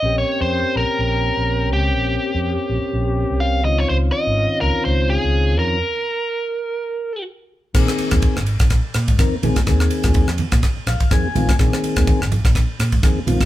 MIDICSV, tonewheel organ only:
0, 0, Header, 1, 2, 480
1, 0, Start_track
1, 0, Tempo, 481155
1, 33, Time_signature, 4, 2, 24, 8
1, 13420, End_track
2, 0, Start_track
2, 0, Title_t, "Tonewheel organ"
2, 0, Program_c, 0, 16
2, 23, Note_on_c, 0, 61, 46
2, 34, Note_on_c, 0, 58, 42
2, 44, Note_on_c, 0, 60, 41
2, 55, Note_on_c, 0, 67, 51
2, 3601, Note_off_c, 0, 61, 0
2, 3606, Note_off_c, 0, 58, 0
2, 3611, Note_off_c, 0, 60, 0
2, 3617, Note_off_c, 0, 67, 0
2, 3634, Note_on_c, 0, 51, 45
2, 3643, Note_on_c, 0, 60, 47
2, 3655, Note_on_c, 0, 61, 44
2, 3661, Note_on_c, 0, 65, 52
2, 5766, Note_off_c, 0, 51, 0
2, 5770, Note_off_c, 0, 60, 0
2, 5776, Note_off_c, 0, 61, 0
2, 5779, Note_off_c, 0, 65, 0
2, 7722, Note_on_c, 0, 51, 75
2, 7724, Note_on_c, 0, 58, 71
2, 7732, Note_on_c, 0, 60, 64
2, 7737, Note_on_c, 0, 68, 78
2, 8345, Note_off_c, 0, 51, 0
2, 8346, Note_off_c, 0, 58, 0
2, 8350, Note_off_c, 0, 60, 0
2, 8352, Note_off_c, 0, 68, 0
2, 9162, Note_on_c, 0, 51, 68
2, 9169, Note_on_c, 0, 58, 61
2, 9175, Note_on_c, 0, 60, 60
2, 9178, Note_on_c, 0, 70, 72
2, 9327, Note_off_c, 0, 51, 0
2, 9331, Note_off_c, 0, 58, 0
2, 9334, Note_off_c, 0, 60, 0
2, 9335, Note_off_c, 0, 70, 0
2, 9405, Note_on_c, 0, 51, 75
2, 9408, Note_on_c, 0, 58, 67
2, 9413, Note_on_c, 0, 60, 70
2, 9420, Note_on_c, 0, 68, 84
2, 9568, Note_off_c, 0, 51, 0
2, 9570, Note_off_c, 0, 58, 0
2, 9573, Note_off_c, 0, 60, 0
2, 9576, Note_off_c, 0, 68, 0
2, 9646, Note_on_c, 0, 51, 71
2, 9653, Note_on_c, 0, 58, 65
2, 9659, Note_on_c, 0, 60, 67
2, 9664, Note_on_c, 0, 68, 81
2, 10265, Note_off_c, 0, 51, 0
2, 10268, Note_off_c, 0, 58, 0
2, 10271, Note_off_c, 0, 60, 0
2, 10273, Note_off_c, 0, 68, 0
2, 10855, Note_on_c, 0, 77, 61
2, 11074, Note_off_c, 0, 77, 0
2, 11081, Note_on_c, 0, 51, 64
2, 11087, Note_on_c, 0, 58, 64
2, 11090, Note_on_c, 0, 80, 59
2, 11093, Note_on_c, 0, 60, 64
2, 11097, Note_on_c, 0, 68, 71
2, 11244, Note_off_c, 0, 51, 0
2, 11247, Note_off_c, 0, 58, 0
2, 11251, Note_off_c, 0, 60, 0
2, 11252, Note_off_c, 0, 68, 0
2, 11324, Note_on_c, 0, 51, 74
2, 11328, Note_on_c, 0, 58, 65
2, 11336, Note_on_c, 0, 60, 71
2, 11338, Note_on_c, 0, 65, 87
2, 11486, Note_off_c, 0, 51, 0
2, 11487, Note_off_c, 0, 58, 0
2, 11491, Note_off_c, 0, 60, 0
2, 11493, Note_off_c, 0, 65, 0
2, 11533, Note_off_c, 0, 80, 0
2, 11559, Note_on_c, 0, 51, 74
2, 11561, Note_on_c, 0, 58, 69
2, 11570, Note_on_c, 0, 60, 65
2, 11571, Note_on_c, 0, 68, 79
2, 12178, Note_off_c, 0, 51, 0
2, 12179, Note_off_c, 0, 58, 0
2, 12183, Note_off_c, 0, 60, 0
2, 12184, Note_off_c, 0, 68, 0
2, 12998, Note_on_c, 0, 51, 67
2, 12999, Note_on_c, 0, 58, 65
2, 13006, Note_on_c, 0, 60, 65
2, 13009, Note_on_c, 0, 68, 75
2, 13159, Note_off_c, 0, 51, 0
2, 13160, Note_off_c, 0, 58, 0
2, 13163, Note_off_c, 0, 60, 0
2, 13165, Note_off_c, 0, 68, 0
2, 13232, Note_on_c, 0, 51, 74
2, 13237, Note_on_c, 0, 58, 71
2, 13241, Note_on_c, 0, 60, 74
2, 13246, Note_on_c, 0, 65, 81
2, 13396, Note_off_c, 0, 51, 0
2, 13398, Note_off_c, 0, 58, 0
2, 13400, Note_off_c, 0, 60, 0
2, 13402, Note_off_c, 0, 65, 0
2, 13420, End_track
0, 0, End_of_file